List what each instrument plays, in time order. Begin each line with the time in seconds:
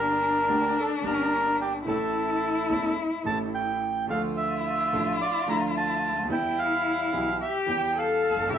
Already playing: grand piano G1 G2 D3 G3 A#3 G4, cello D4, bandoneon A#4
0.48 grand piano D2 D3 G3 A#3 G4
0.79 bandoneon A4
1.01 grand piano G1 G2 D3 G3 A#3 G4
1.06 bandoneon A#4
1.61 bandoneon G4
1.85 grand piano A1 A2 E3 A3 C#4 A4, cello E4, bandoneon A4
2.70 grand piano E1 E2 E3 A3 C#4 A4
3.23 grand piano A1 A2 E3 A3 C#4, bandoneon A5
3.28 grand piano A4
3.55 bandoneon G5
4.07 grand piano D2 D3 F3 A3 D4 A4, cello F4, bandoneon F5
4.37 bandoneon E5
4.93 grand piano A1 A2 F3 A3 D4 A4
5.22 bandoneon D5
5.46 grand piano D2 D3 F3 A3 D4, bandoneon A#5
5.50 grand piano A4
5.77 bandoneon A5
6.09 grand piano C#2
6.16 grand piano D2
6.23 grand piano D#2
6.28 grand piano E2 E3 G3 B3 G4, cello E4, bandoneon G5
6.59 bandoneon F5
7.13 grand piano B1 B2 E3 G3 B3 G4
7.41 cello G4, bandoneon E5
7.66 grand piano E2 E3 G3 B3
7.70 grand piano G4, bandoneon G5
7.96 cello A4, bandoneon F5
8.30 grand piano F#1
8.37 grand piano G1
8.43 grand piano G#1
8.48 grand piano A1 A2 C#3 E3 A3, cello G4
8.53 grand piano E4, bandoneon E5